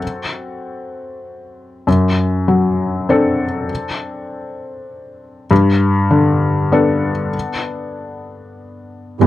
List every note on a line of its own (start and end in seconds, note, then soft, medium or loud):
0.00 1.84 C4 soft
0.00 1.84 F#4 soft
0.00 1.84 A4 soft
1.87 3.66 F#2 soft
2.48 3.45 F#3 soft
3.09 5.46 C4 soft
3.09 5.47 D4 soft
3.09 5.47 A4 soft
5.51 7.30 G2 medium
6.11 7.09 D3 soft
6.72 9.17 B3 soft
6.72 9.18 D4 soft
6.72 9.18 A4 soft
9.21 9.27 E2 soft
9.21 9.27 G2 soft
9.21 9.27 B3 soft
9.21 9.27 E4 soft
9.21 9.27 G4 soft